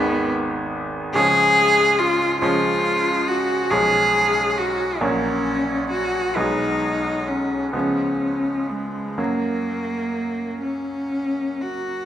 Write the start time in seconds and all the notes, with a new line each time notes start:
Already playing: G#1 D#3 G#3 B3
1.14 C#2 F3 G#3 C#4 G#4
1.99 F4
2.41 C#2 F3 G#3 C#4 F4
3.28 F#4
3.71 B1 F3 G#3 C#4 G#4
4.58 F#4
5.01 A#1 F#3 A#3 C#4
5.90 F#4
6.36 B1 F#3 G#3 B3 D#4
7.28 C#4
7.73 C#2 F3 G#3 B3 C#4
8.71 G#3
9.18 F#2 F#3 A#3
10.63 C#4
11.61 F#4